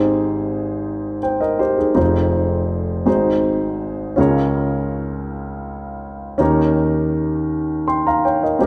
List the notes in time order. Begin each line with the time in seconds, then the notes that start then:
Already playing: G#1 G#2 C4 D#4 G4 G#4 C5
1.23 C5 G5
1.41 A#4 D#5
1.59 G4 C5
1.78 D#4 G#4
1.95 F1 F2 C4 D#4 F4 G4 C5
2.03 G#4
3.06 G#1 G#2 C4 D#4 F#4 G#4 C5
4.16 C#2 C#3 C#4 F4 G#4 A#4
4.21 C#5
6.38 D#2 D#3 C#4 D#4 G4 A#4
6.43 C#5
7.88 G5 C6
8.07 F5 A#5
8.25 C#5 G5
8.43 A#4 D#5
8.59 G#1 G#2 C4 D#4 G4 G#4
8.63 A#4